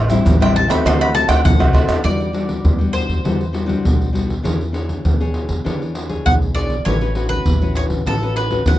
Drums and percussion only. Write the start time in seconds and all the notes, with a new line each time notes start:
0.10 pandeiro, maracas, surdo
0.26 pandeiro, maracas, surdo
0.42 pandeiro, tamborim, maracas, surdo
0.56 pandeiro
0.70 pandeiro, tamborim, maracas, surdo
0.86 pandeiro, tamborim, maracas, surdo
1.01 pandeiro, tamborim, maracas
1.15 pandeiro, maracas
1.29 pandeiro, tamborim, maracas, surdo
1.45 pandeiro, maracas, surdo
1.60 pandeiro, tamborim, maracas
1.75 pandeiro, tamborim
1.89 pandeiro, tamborim, maracas
2.05 pandeiro, surdo
2.20 pandeiro
2.35 pandeiro
2.49 pandeiro, surdo
2.65 pandeiro, surdo
2.81 pandeiro
2.94 pandeiro
3.10 pandeiro, surdo
3.25 pandeiro, surdo
3.41 pandeiro
3.54 pandeiro
3.69 pandeiro, surdo
3.85 pandeiro, surdo
4.02 pandeiro
4.15 pandeiro
4.30 pandeiro, surdo
4.45 pandeiro, surdo
4.61 pandeiro
4.74 pandeiro
4.89 pandeiro, surdo
5.05 pandeiro, surdo
5.21 pandeiro
5.34 pandeiro
5.49 pandeiro, surdo
5.66 pandeiro, surdo
5.82 pandeiro
5.95 pandeiro
6.10 pandeiro, surdo
6.26 pandeiro, surdo
6.42 pandeiro
6.56 pandeiro
6.70 pandeiro, surdo
6.86 pandeiro, surdo
7.01 pandeiro
7.15 pandeiro
7.29 pandeiro, surdo
7.46 pandeiro, surdo
7.62 pandeiro
7.75 pandeiro, surdo
7.90 pandeiro, surdo
8.07 pandeiro, surdo
8.23 pandeiro
8.36 pandeiro
8.51 pandeiro, surdo
8.66 pandeiro, surdo